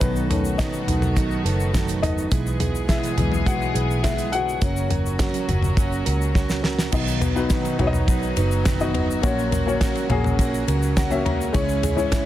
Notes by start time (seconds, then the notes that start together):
0.00 B1 B2 D#3 F#3 A3 B3 D#4 F#4 A4 B4, kick, closed hi-hat, shaker
0.16 shaker
0.30 D#3 F#3 A3 B3 C#4 D#4 A4, closed hi-hat, floor tom
0.45 shaker
0.58 B2 D#3 F#3 B3 D#4 A4 D#5, kick, snare, closed hi-hat, shaker
0.73 shaker
0.88 B1 F#3 B3 D#4 A4, closed hi-hat, floor tom
1.02 floor tom, shaker
1.16 F#3 B3 D#4 A4, kick, closed hi-hat, shaker
1.31 shaker
1.44 F#1 F#3 B3 D#4 A4, closed hi-hat
1.60 shaker
1.74 B2 D#3 F#3 B3 D#4 A4, kick, snare, closed hi-hat, shaker
1.88 closed hi-hat, shaker
2.02 F#3 B3 D#4 A4 D#5, closed hi-hat, floor tom
2.18 shaker
2.31 B1 B2 E3 G#3 B3 E4 G#4, kick, closed hi-hat, shaker
2.47 shaker
2.60 G#3 B3 E4 G#4, closed hi-hat, floor tom
2.75 shaker
2.88 B2 E3 G#3 B3 E4 G#4 E5, kick, snare, closed hi-hat, shaker
3.03 closed hi-hat, shaker
3.17 B1 E3 G#3 B3 E4 G#4, closed hi-hat, floor tom
3.32 floor tom, shaker
3.46 G#3 B3 E4 F#4 G#4 F#5, kick, closed hi-hat, shaker
3.62 shaker
3.74 B1 G#3 B3 E4 G#4, closed hi-hat
3.91 shaker
4.03 B2 E3 G#3 B3 E4 G#4 E5, kick, snare, closed hi-hat, shaker
4.18 closed hi-hat, shaker
4.32 G#3 B3 E4 F#4 G#4 F#5, closed hi-hat
4.49 shaker
4.61 F#1 A#2 C#3 F#3 A#3 C#4 F#4 A#4, kick, closed hi-hat, shaker
4.77 shaker
4.89 C#4 F#4 A#4, closed hi-hat, floor tom
5.06 shaker
5.18 F#3 C#4 F#4 A#4, kick, snare, closed hi-hat, shaker
5.34 closed hi-hat, shaker
5.48 F#1 C#4 F#4 A#4, closed hi-hat, floor tom
5.62 floor tom, shaker
5.77 F#3 C#4 F#4 A#4, kick, closed hi-hat, shaker
5.92 shaker
6.05 C#2 C#4 F#4 A#4, closed hi-hat
6.22 shaker
6.34 F#3 C#4 F#4 A#4, kick, snare, shaker
6.49 snare, shaker
6.63 C#4 F#4 A#4, snare
6.79 snare, shaker
6.92 B1 B2 D#3 F#3 B3 D#4 F#4 B4 D#5, kick, crash, shaker
7.08 shaker
7.21 F#3 B3 D#4 B4, floor tom, ride, shaker
7.35 B3 D#4 F#4 B4, shaker
7.50 B2 D#3 F#3 B3 D#4 B4, kick, snare, ride, shaker
7.65 ride, shaker
7.78 B1 F#3 B3 D#4 F#4 B4 C#5, floor tom, ride
7.87 D#5
7.93 floor tom, shaker
8.08 F#3 B3 D#4 B4, kick, ride, shaker
8.23 shaker
8.37 F#1 F#3 B3 D#4 B4, ride, shaker
8.51 shaker
8.65 B2 D#3 F#3 B3 D#4 B4, kick, snare, ride, shaker
8.79 B3 D#4 F#4 D#5, shaker
8.94 F#3 B3 D#4 B4, floor tom, ride
9.11 shaker
9.22 A#1 A#2 C#3 A#3 C#4 F#4 A#4 C#5, kick, ride, shaker
9.39 shaker
9.51 C#4 F#4 A#4, floor tom, ride, shaker
9.66 A#3 C#4 F#4 C#5, shaker
9.81 A#3 C#4 F#4 A#4, kick, snare, ride, shaker
9.95 ride, shaker
10.09 A#1 A#3 C#4 F#4 G#4 A#4, floor tom, ride
10.24 floor tom, shaker
10.39 A#3 C#4 F#4 A#4, kick, ride, shaker
10.54 shaker
10.67 C#2 C#4 F#4 A#4, ride, shaker
10.82 shaker
10.96 A#3 C#4 F#4 A#4 F#5, kick, snare, ride, shaker
11.10 A#3 C#4 F#4 E5, shaker
11.25 C#4 F#4 A#4 A#5, floor tom, ride
11.41 shaker
11.53 C#2 G#2 C#3 E3 G#3 C#4 E4 G#4 C#5, kick, ride, shaker
11.69 shaker
11.83 C#4 E4 G#4, floor tom, ride, shaker
11.96 G#3 C#4 E4 C#5, shaker
12.12 C#3 G#3 C#4 E4 G#4, kick, snare, ride, shaker